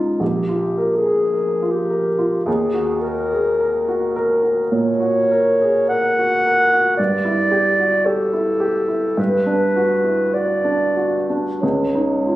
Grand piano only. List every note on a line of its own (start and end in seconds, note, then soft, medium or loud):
0.00 0.17 C#2 soft
0.00 0.23 D#4 soft
0.00 0.23 F4 soft
0.20 2.43 A#1 soft
0.49 0.95 F4 soft
0.78 1.24 A#4 soft
1.06 1.35 G#4 soft
1.33 1.79 A#4 soft
1.62 2.07 F4 soft
1.90 2.35 A#4 soft
2.19 2.47 F4 soft
2.46 4.67 D#2 soft
2.74 3.20 F#4 soft
3.04 3.49 A#4 soft
3.33 3.61 G#4 soft
3.60 4.05 A#4 soft
3.88 4.33 F#4 soft
4.16 4.60 A#4 soft
4.43 4.88 F#4 soft
4.71 5.18 A#2 soft
5.00 5.49 F#4 soft
5.31 5.79 A#4 soft
5.62 5.90 G#4 soft
5.91 6.35 A#4 soft
6.19 6.61 F#4 soft
6.46 6.88 A#4 soft
6.73 6.99 F#4 soft
6.99 9.15 G2 soft
7.25 7.68 E4 soft
7.52 7.95 G4 soft
7.80 8.06 F#4 soft
8.06 8.50 G4 soft
8.33 8.78 E4 soft
8.60 9.06 G4 soft
8.88 9.18 E4 soft
9.17 11.58 G2 soft
9.46 9.93 D4 soft
9.76 10.23 F#4 soft
10.04 10.34 E4 soft
10.34 10.84 F#4 soft
10.64 11.16 D4 soft
10.96 11.49 F#4 soft
11.30 11.63 D4 soft
11.63 12.36 C#2 soft
11.95 12.36 D#4 soft
12.27 12.36 F4 soft